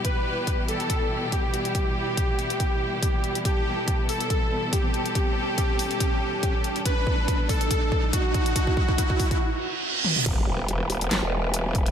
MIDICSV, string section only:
0, 0, Header, 1, 2, 480
1, 0, Start_track
1, 0, Key_signature, 1, "minor"
1, 0, Tempo, 425532
1, 53, Time_signature, 4, 2, 24, 8
1, 13437, End_track
2, 0, Start_track
2, 0, Title_t, "String section"
2, 0, Program_c, 0, 48
2, 0, Note_on_c, 0, 47, 81
2, 0, Note_on_c, 0, 52, 74
2, 0, Note_on_c, 0, 55, 74
2, 0, Note_on_c, 0, 64, 72
2, 0, Note_on_c, 0, 67, 89
2, 3847, Note_off_c, 0, 67, 0
2, 3892, Note_on_c, 0, 69, 92
2, 10567, Note_off_c, 0, 47, 0
2, 10567, Note_off_c, 0, 55, 0
2, 10567, Note_off_c, 0, 69, 0
2, 10568, Note_off_c, 0, 52, 0
2, 10568, Note_off_c, 0, 64, 0
2, 11573, Note_on_c, 0, 59, 81
2, 11574, Note_on_c, 0, 52, 85
2, 11574, Note_on_c, 0, 55, 77
2, 11574, Note_on_c, 0, 67, 81
2, 11574, Note_on_c, 0, 71, 94
2, 13437, Note_off_c, 0, 52, 0
2, 13437, Note_off_c, 0, 55, 0
2, 13437, Note_off_c, 0, 59, 0
2, 13437, Note_off_c, 0, 67, 0
2, 13437, Note_off_c, 0, 71, 0
2, 13437, End_track
0, 0, End_of_file